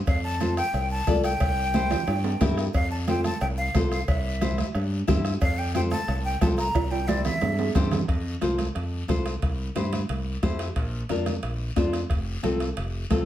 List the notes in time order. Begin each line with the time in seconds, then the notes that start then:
0.07 F2 F5, bombo low, bombo rim, cowbell, long guiro
0.24 A5
0.40 F4 A4 C5, bombo rim, cowbell, high conga, short guiro
0.57 G5, bombo rim, short guiro
0.74 C2, bombo rim, cowbell, long guiro
0.91 A5
1.07 C2 F4 A4 D5, bombo low, bombo rim, cowbell, high conga, low timbale, short guiro
1.24 G5, bombo rim, short guiro
1.40 C2, bombo low, bombo rim, cowbell, long guiro
1.74 E4 G4 C5, bombo rim, cowbell, high conga, short guiro
1.91 bombo rim, low conga, high timbale, short guiro
2.07 G2, bombo rim, cowbell, high timbale, long guiro
2.24 low timbale
2.41 G2 E4 G4 A#4, bombo low, bombo rim, cowbell, high conga, low conga, low timbale, short guiro
2.58 bombo rim, low timbale, short guiro
2.74 F2 F5, bombo low, bombo rim, cowbell, long guiro
2.91 A5
3.07 F4 A4 C5 G5, bombo rim, cowbell, high conga, short guiro
3.24 A5, bombo rim, high conga, short guiro
3.41 C2 G5, bombo rim, cowbell, long guiro
3.57 F5
3.74 C2 F4 A4 C5, bombo low, bombo rim, cowbell, high conga, low timbale, short guiro
3.91 F5, bombo rim, short guiro
4.08 C2 E5, bombo low, bombo rim, cowbell, long guiro
4.41 E4 G4 C5, bombo rim, cowbell, high conga, short guiro
4.58 bombo rim, high conga, short guiro
4.75 G2, bombo rim, cowbell, long guiro
5.07 G2 E4 G4 C5, bombo low, bombo rim, cowbell, high conga, low conga, low timbale, short guiro
5.25 bombo rim, short guiro
5.41 F2 F5, bombo low, bombo rim, cowbell, long guiro
5.58 G5
5.75 F4 A4 C5 G5, bombo rim, cowbell, high conga, short guiro
5.91 A5, bombo rim, high conga, short guiro
6.08 C2, bombo rim, cowbell, long guiro
6.25 G5
6.41 C2 F4 A4 C5 A5, bombo low, bombo rim, cowbell, high conga, low timbale, short guiro
6.58 A#5, bombo rim, short guiro
6.75 C2, bombo low, bombo rim, cowbell, high timbale, long guiro
6.91 G5, high timbale
7.08 E4 G4 C5 D5, bombo rim, cowbell, high conga, high timbale, short guiro
7.24 E5, bombo rim, low conga, low timbale, short guiro
7.41 G2, bombo rim, cowbell, high conga, low timbale, long guiro
7.59 low timbale
7.75 G2 E4 G4 C5, bombo low, bombo rim, cowbell, low conga, low timbale, short guiro
7.91 bombo rim, low conga, low timbale, short guiro
8.08 F2, bombo low, bombo rim, high timbale, long guiro
8.41 C2 F4 A4 C5, bombo rim, high conga, high timbale, short guiro
8.58 bombo rim, high conga, high timbale, short guiro
8.75 F2, bombo rim, high timbale, long guiro
9.08 C2 F4 A4 C5, bombo low, bombo rim, high conga, high timbale, short guiro
9.26 bombo rim, high timbale, short guiro
9.42 C2, bombo low, bombo rim, high timbale, long guiro
9.75 G2 E4 G4 C5, bombo rim, high conga, high timbale, short guiro
9.93 bombo rim, high conga, high timbale, short guiro
10.09 C2, bombo rim, high timbale, long guiro
10.43 F2 E4 G4 C5, bombo low, bombo rim, high conga, high timbale, low timbale, short guiro
10.59 bombo rim, high timbale, short guiro
10.76 A#1, bombo low, bombo rim, high timbale, long guiro
11.09 F2 D4 F4 A#4, bombo rim, high conga, high timbale, short guiro
11.26 bombo rim, high conga, high timbale, short guiro
11.43 A#1, bombo rim, high timbale, long guiro
11.76 F2 D4 F4 C5, bombo low, bombo rim, high conga, high timbale, low timbale, short guiro
11.93 bombo rim, high timbale, short guiro
12.10 F1, bombo low, bombo rim, high timbale, long guiro
12.43 C2 C4 F4 A4, bombo rim, high conga, high timbale, short guiro
12.60 bombo rim, high timbale, short guiro
12.77 F1, bombo rim, high timbale, long guiro
13.10 C2 C4 F4 A4, bombo low, bombo rim, high conga, high timbale, low timbale, short guiro